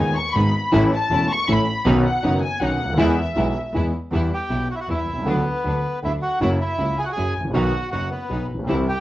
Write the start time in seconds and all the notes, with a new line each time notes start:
Already playing: D#2 D#3 G#3 B3 D#4 G#5
0.00 D#1 D#2 G#4
0.16 C#6
0.34 G#1 G#2 D#3 G#3 B3 D#4 G#4 B5
0.72 A1 A2 E3 A3 C#4 E4 A4
0.92 A5
1.10 E1 E2 E3 A3 C#4 E4 A4
1.30 C#6
1.48 A1 A2 E3 A3 C#4 E4 A4 B5
1.85 B1 B2 D#3 B3 C#4 D#4 F#4
2.05 F#5
2.23 F#1 F#2 D#3 B3 C#4 D#4 F#4
2.43 G#5
2.61 B1 B2 D#3 B3 C#4 D#4 F#4 F#5
2.79 D2
2.84 C#2
2.89 D2
2.94 D#2 E2 E3 G#3
2.98 E2 B3 E4 G#4 E5
3.35 B1 B2 E3 G#3 B3 E4 G#4
3.73 E2 E3 G#3 B3 E4 G#4
4.11 E2 E3 G3 B3 E4 G4
4.33 G4 G5
4.50 B1 B2 G3 B3 E4
4.71 F#4 F#5
4.75 E4 E5
4.80 F#4 F#5
4.88 E2 E3 G3 B3 E4 E5
5.08 C2
5.13 B1
5.18 C2 C#2
5.26 D2 D3 F#3 B3 D4 F#4 B4
5.64 D2 D3 F#3 B3 D4
6.02 D2 D3 F#3 B3 D4 E4 E5
6.22 F#4 F#5
6.41 F#1 F#2 C#3 F#3 A#3 E4 F#4 F#5
6.60 E4 E5
6.78 C#2 C#3 F#3 A#3 E4
6.98 G#4 G#5
7.05 F#4 F#5
7.12 G#4 G#5
7.17 F#1 F#2 F#3 A#3 E4
7.35 A1
7.40 G#1
7.45 A1
7.50 A#1 B1 B2 D#3 F#3
7.54 B1 F#3 B3 D#4 F#4 F#5
7.92 F#1 F#2 F#3 B3 D#4 F#4 F#5
8.11 B3 B4
8.30 B1 B2 F#3 B3 D#4
8.49 A#1
8.54 A1
8.59 A#1
8.64 B1
8.68 C2 C3 E3 G3 C4 E4 G4
8.88 G4 G5